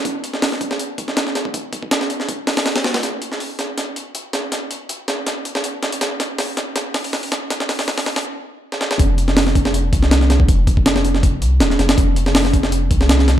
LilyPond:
<<
  \new Staff \with { instrumentName = "Sub bass" } { \clef bass \time 4/4 \key c \phrygian \tempo 4 = 161 r1 | r1 | r1 | r1 |
r1 | r1 | f,,2~ f,,8 c,4. | f,,2~ f,,8 c,8 ees,,8 f,,8 |
f,,2~ f,,8 c,4. | }
  \new DrumStaff \with { instrumentName = "Drums" } \drummode { \time 4/4 <hh bd>8 hh16 sn16 <hho sn>16 sn16 <hh bd>16 sn16 hh8 <hh bd>16 sn16 <hh sn>16 sn16 <hh sn>16 bd16 | <hh bd>8 <hh bd>16 bd16 <hh sn>16 sn16 hh16 sn16 <hh bd>8 <hho sn>16 <hho sn>16 <hho sn>16 <hho sn>16 <hho sn>16 <hho sn>16 | <hh sn>8 hh16 sn16 hho8 <hh sn>8 <hh sn>8 hh8 hh8 <hh sn>8 | <hh sn>8 hh8 hh8 <hh sn>8 <hh sn>8 hh16 sn16 hh8 <hh sn>16 hh16 |
<hh sn>8 <hh sn>8 <hho sn>8 <hh sn>8 <hh sn>8 <hho sn>16 hho16 <hho sn>16 hho16 <hh sn>8 | <hh sn>16 sn16 <hho sn>16 <hho sn>16 <hho sn>16 <hho sn>16 <hho sn>16 <hho sn>16 r4 r16 sn16 sn16 sn16 | <hh bd>8 hh16 sn16 <hho sn>16 sn16 <hh bd>16 sn16 hh8 <hh bd>16 sn16 <hh sn>16 sn16 <hh sn>16 bd16 | <hh bd>8 <hh bd>16 bd16 <hh sn>16 sn16 hh16 sn16 <hh bd>8 hh8 <hh sn>16 sn16 <hh sn>16 <hh sn>16 |
<hh bd>8 hh16 sn16 <hho sn>16 sn16 <hh bd>16 sn16 hh8 <hh bd>16 sn16 <hh sn>16 sn16 <hh sn>8 | }
>>